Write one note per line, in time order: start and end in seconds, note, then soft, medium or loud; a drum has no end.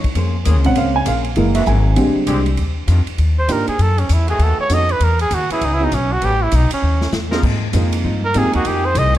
0.04 muted upright bass stroke soft
0.04 kick medium
0.04 ride medium
0.15 0.44 F2 medium
0.15 0.35 A#3 medium
0.15 0.36 C#4 medium
0.15 0.36 G#4 medium
0.15 0.36 C5 medium
0.15 ride medium
0.45 0.56 D#2 loud
0.45 0.58 C#3 medium
0.45 0.58 A#3 medium
0.45 0.66 A#3 medium
0.45 0.58 C4 medium
0.45 0.66 C#4 medium
0.45 0.58 G#4 loud
0.45 0.66 G#4 medium
0.45 0.66 C5 medium
0.45 hi-hat pedal medium
0.45 ride medium
0.56 0.66 C#2 medium
0.64 0.76 A#1 medium
0.64 1.04 C#3 soft
0.64 1.05 G#3 soft
0.64 1.05 C4 medium
0.64 0.76 F#5 medium
0.64 ride medium
0.75 1.06 C#2 medium
0.75 0.96 A#3 medium
0.75 0.96 C#4 medium
0.75 0.96 G#4 medium
0.75 0.97 C5 medium
0.75 0.95 F5 medium
0.75 ride medium
0.96 1.06 G#5 medium
1.06 1.36 A#1 medium
1.06 1.26 A#3 medium
1.06 1.26 C#4 medium
1.06 1.27 G#4 medium
1.06 1.27 C5 medium
1.06 1.19 F5 medium
1.06 hi-hat pedal medium
1.06 ride medium
1.24 ride soft
1.36 1.66 F#1 medium
1.36 1.59 E3 medium
1.36 1.57 F#3 medium
1.36 1.59 G#3 medium
1.36 1.59 A#3 medium
1.36 1.57 E4 medium
1.36 1.57 G#4 medium
1.36 1.57 A#4 medium
1.36 ride medium
1.55 1.63 E3 loud
1.55 1.63 G#3 medium
1.55 1.63 A#3 medium
1.55 1.63 F#4 loud
1.55 1.66 E5 medium
1.55 ride medium
1.66 1.96 G#1 loud
1.66 1.87 F#3 medium
1.66 1.87 E4 medium
1.66 1.87 G#4 medium
1.66 1.87 A#4 medium
1.66 2.13 G#5 medium
1.66 hi-hat pedal soft
1.96 2.15 A#1 medium
1.96 2.17 A#2 medium
1.96 2.44 D3 medium
1.96 2.44 G3 soft
1.96 2.44 G#3 medium
1.96 2.17 G#3 medium
1.96 2.44 C4 medium
1.96 2.18 D4 medium
1.96 2.18 G4 medium
1.96 ride medium
2.16 muted upright bass stroke soft
2.27 2.56 C2 medium
2.27 2.47 A#2 medium
2.27 2.40 D3 medium
2.27 2.40 G#3 loud
2.27 2.48 G#3 medium
2.27 2.40 C4 medium
2.27 2.48 D4 medium
2.27 2.40 G4 loud
2.27 2.48 G4 medium
2.27 hi-hat pedal medium
2.27 ride medium
2.46 ride soft
2.57 2.87 D#2 medium
2.57 ride medium
2.87 3.06 F2 loud
2.87 3.01 D#3 medium
2.87 3.01 G3 medium
2.87 3.00 D4 medium
2.87 3.00 F4 medium
2.87 hi-hat pedal soft
2.87 ride medium
3.07 muted upright bass stroke soft
3.07 ride medium
3.18 3.48 D#2 medium
3.18 ride medium
3.39 3.53 C5 medium
3.48 3.66 G#2 medium
3.48 3.66 A#3 medium
3.48 3.66 D4 medium
3.48 3.66 D#4 medium
3.48 3.66 F4 medium
3.48 3.66 G4 medium
3.48 3.68 A#4 medium
3.48 hi-hat pedal medium
3.48 ride medium
3.68 3.84 G#4 medium
3.68 muted upright bass stroke soft
3.68 ride soft
3.79 4.08 F#2 medium
3.79 4.01 A4 medium
3.79 ride medium
3.98 4.15 C#4 medium
3.98 ride medium
4.09 4.38 E2 loud
4.09 4.30 E4 medium
4.09 hi-hat pedal medium
4.09 ride medium
4.27 4.67 D#3 loud
4.27 4.67 A3 medium
4.27 4.68 B3 medium
4.27 4.67 F#4 loud
4.27 4.45 G#4 medium
4.27 ride medium
4.39 4.57 D#2 medium
4.39 ride medium
4.43 4.60 A4 medium
4.59 4.75 C#5 medium
4.59 muted upright bass stroke soft
4.69 4.99 F2 medium
4.69 4.87 B3 medium
4.69 4.87 C#4 medium
4.69 4.87 D#4 medium
4.69 4.87 F#4 medium
4.69 4.88 A4 medium
4.69 hi-hat pedal medium
4.69 ride medium
4.74 4.93 D#5 loud
4.89 5.06 B4 medium
4.89 ride soft
5.00 5.30 E2 medium
5.00 5.21 A#4 medium
5.00 ride medium
5.19 5.36 G#4 medium
5.19 ride medium
5.31 5.49 D#2 loud
5.31 5.52 F#4 medium
5.31 hi-hat pedal medium
5.31 ride medium
5.50 5.90 E3 medium
5.50 5.90 B3 medium
5.50 5.90 C#4 medium
5.50 5.66 E4 medium
5.50 5.90 G#4 loud
5.50 muted upright bass stroke soft
5.50 ride medium
5.61 5.91 C#2 medium
5.61 5.75 D#4 medium
5.61 ride medium
5.74 5.86 E4 medium
5.80 5.90 B3 medium
5.80 5.91 C#4 medium
5.80 5.91 E4 medium
5.80 5.91 F#4 medium
5.80 5.91 G#4 medium
5.84 5.96 D#4 medium
5.92 6.21 B1 medium
5.92 6.14 C#4 medium
5.92 hi-hat pedal medium
5.92 ride medium
6.13 6.27 F#4 medium
6.21 6.52 A1 medium
6.21 6.35 G3 medium
6.21 6.35 B3 medium
6.21 6.35 C#4 medium
6.21 6.45 G4 medium
6.21 6.35 A4 medium
6.21 ride medium
6.43 6.57 E4 medium
6.51 6.70 B1 loud
6.51 hi-hat pedal medium
6.51 ride medium
6.56 6.73 D#4 medium
6.71 7.12 C#4 medium
6.71 muted upright bass stroke soft
6.71 ride medium
6.83 7.12 D#2 medium
7.01 snare medium
7.12 7.42 E2 medium
7.12 snare medium
7.12 hi-hat pedal medium
7.31 7.39 F3 loud
7.31 7.42 A#3 medium
7.31 7.39 C4 loud
7.31 7.42 C4 medium
7.31 7.40 D#4 loud
7.31 7.43 D#4 medium
7.31 7.43 F4 medium
7.31 7.43 G#4 medium
7.31 7.40 A#4 loud
7.31 snare medium
7.43 7.63 G#2 medium
7.43 7.73 G#2 medium
7.43 7.64 F3 medium
7.43 7.64 C4 medium
7.43 7.64 D#4 medium
7.43 kick medium
7.43 crash medium
7.73 8.03 F2 loud
7.73 7.94 G#2 medium
7.73 7.94 F3 medium
7.73 8.20 A#3 medium
7.73 7.94 C4 medium
7.73 8.20 C4 medium
7.73 8.20 D#4 medium
7.73 7.95 D#4 medium
7.73 8.20 F4 medium
7.73 8.20 G#4 medium
7.73 hi-hat pedal medium
7.73 ride medium
7.93 ride medium
8.03 8.34 G2 medium
8.03 8.24 G#2 medium
8.03 8.24 F3 medium
8.03 8.25 C4 medium
8.03 8.25 D#4 medium
8.25 8.40 A#4 medium
8.34 8.55 G#2 medium
8.34 8.45 G#2 medium
8.34 8.55 F3 medium
8.34 8.52 A#3 medium
8.34 8.55 C4 medium
8.34 8.52 C4 medium
8.34 8.52 D#4 medium
8.34 8.55 D#4 medium
8.34 8.53 F4 medium
8.34 8.53 G4 medium
8.34 8.55 G#4 medium
8.34 hi-hat pedal medium
8.34 ride medium
8.45 8.54 F2 medium
8.53 8.64 D#2 medium
8.53 8.94 A#3 loud
8.53 8.94 D#4 loud
8.53 8.69 F#4 medium
8.53 8.94 G4 loud
8.53 8.94 G#4 loud
8.53 ride medium
8.65 8.94 F2 medium
8.65 8.85 F3 soft
8.65 8.86 A#3 soft
8.65 8.86 D#4 medium
8.65 8.87 G4 medium
8.65 8.86 G#4 medium
8.65 ride medium
8.86 9.00 C5 loud
8.95 9.18 C2 loud
8.95 9.16 F3 medium
8.95 9.16 A#3 medium
8.95 9.16 D#4 medium
8.95 9.16 G#4 medium
8.95 9.16 D#5 loud
8.95 hi-hat pedal medium
8.95 ride medium
9.14 ride medium